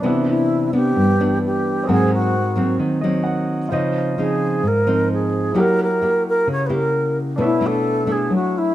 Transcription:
0.00 nylon-string guitar C3 E3 B3 D4, grand piano D4 B4
0.04 grand piano C4 E5, alto flute E4
0.29 alto flute E4
0.73 nylon-string guitar E3 B3 D4, alto flute G4
0.96 nylon-string guitar G2
1.20 nylon-string guitar E3 B3 D4
1.46 alto flute G4
1.83 grand piano C4 G#4 A#4
1.89 nylon-string guitar G#2 F#3 A#3 C4, alto flute G#4, grand piano F#5
2.14 alto flute F#4
2.56 nylon-string guitar F#3 A#3 C4
2.79 nylon-string guitar D#3
3.01 nylon-string guitar F#3 A#3 C4, grand piano D#5
3.24 grand piano F#5
3.69 nylon-string guitar C#3 F3 C4 D#4, grand piano F4 C5
3.73 grand piano D#5
4.18 nylon-string guitar F3 C4 D#4, alto flute G#4
4.63 nylon-string guitar G#2
4.67 alto flute A#4
4.87 nylon-string guitar F3 C4 D#4
5.13 alto flute G#4
5.52 nylon-string guitar F#3 A#3 E4 G4, grand piano E4 G4
5.56 grand piano A#4 F#5, alto flute A#4
5.83 alto flute A#4
6.01 nylon-string guitar A#3 E4 G4
6.29 alto flute A#4
6.47 nylon-string guitar C#3
6.52 alto flute C#5
6.66 nylon-string guitar A#3 E4, alto flute B4
6.70 nylon-string guitar G4, alto flute A#4
7.36 nylon-string guitar B2 A3 D4 E4, grand piano D4 A4 B4
7.41 alto flute E4, grand piano C#5 E5
7.61 nylon-string guitar A3 D4 E4
7.66 alto flute A4
8.07 nylon-string guitar A3 D4 E4
8.12 alto flute G#4
8.30 nylon-string guitar F#3
8.35 alto flute F#4
8.58 alto flute E4

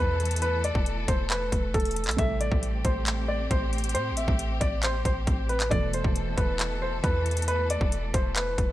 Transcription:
Already playing: 808-style bass E2, string section B2 E3 A4, felt piano B2 E3 A3 E4 A4, grand piano B4
0.20 closed hi-hat
0.25 closed hi-hat
0.31 closed hi-hat
0.36 closed hi-hat
0.42 string section A3, grand piano B4, closed hi-hat
0.64 grand piano D5, closed hi-hat
0.75 808-style bass E1, kick
0.86 closed hi-hat
1.08 808-style bass E1, grand piano C5, kick, closed hi-hat
1.30 grand piano B4, clap, closed hi-hat
1.52 808-style bass E1, kick, closed hi-hat
1.74 808-style bass E1, grand piano A4, kick, closed hi-hat
1.80 closed hi-hat
1.85 closed hi-hat
1.91 closed hi-hat
1.96 closed hi-hat, open hi-hat
2.04 808-style bass B1, clap, closed hi-hat
2.11 closed hi-hat
2.17 808-style bass A1, felt piano C3 G3 A3 E4 A4, string section C4 G4, grand piano E5, kick, closed hi-hat
2.41 grand piano D5, closed hi-hat
2.52 808-style bass A1, kick
2.63 closed hi-hat
2.85 808-style bass A1, grand piano C5, kick, closed hi-hat
3.06 clap, closed hi-hat
3.28 grand piano D5
3.51 808-style bass A1, grand piano C5, kick, closed hi-hat
3.73 closed hi-hat
3.78 closed hi-hat
3.84 closed hi-hat
3.89 closed hi-hat
3.94 808-style bass A2, grand piano C5, closed hi-hat
4.11 808-style bass A1
4.17 grand piano E5, closed hi-hat
4.28 808-style bass A1, kick
4.39 closed hi-hat
4.61 808-style bass A1, grand piano D5, kick, closed hi-hat
4.83 grand piano C5, clap, closed hi-hat
5.05 808-style bass A1, grand piano C5, kick, closed hi-hat
5.27 808-style bass A1, kick, closed hi-hat
5.49 grand piano B4, closed hi-hat
5.60 clap, closed hi-hat
5.70 808-style bass E1, felt piano B2 E3 A3 E4 A4, string section B2 E3 A4, grand piano D5, kick, closed hi-hat
5.93 grand piano C5, closed hi-hat
6.04 808-style bass E1, kick
6.16 closed hi-hat
6.37 808-style bass E1, grand piano B4, kick, closed hi-hat
6.59 clap, closed hi-hat
6.82 grand piano C5
7.04 808-style bass E2, grand piano B4, kick, closed hi-hat
7.26 closed hi-hat
7.31 closed hi-hat
7.37 closed hi-hat
7.42 closed hi-hat
7.48 string section A3, grand piano B4, closed hi-hat
7.70 grand piano D5, closed hi-hat
7.81 808-style bass E1, kick
7.92 closed hi-hat
8.14 808-style bass E1, grand piano C5, kick, closed hi-hat
8.36 grand piano B4, clap, closed hi-hat
8.58 808-style bass E1, kick, closed hi-hat

